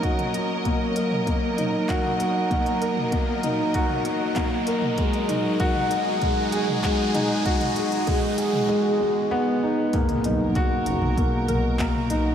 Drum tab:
HH |xxx-x-x-x-x-x-x-|xxx-x-x-x-x-x-x-|xxx-x-x-x-x-x-x-|xxxxx-x---------|
CP |------------x---|------------x---|------------x---|----------------|
T2 |-o--o--o--o--o--|o--o--o--o--o--o|--o--o--o--o--o-|-o--o--o--------|
BD |o---o---o---o---|o---o---o---o---|o---o---o---o---|o---o-----------|

HH |xxx-x-x-x-x-x-x-|
CP |------------x---|
T2 |-o--o--o--o--o--|
BD |o---o---o---o---|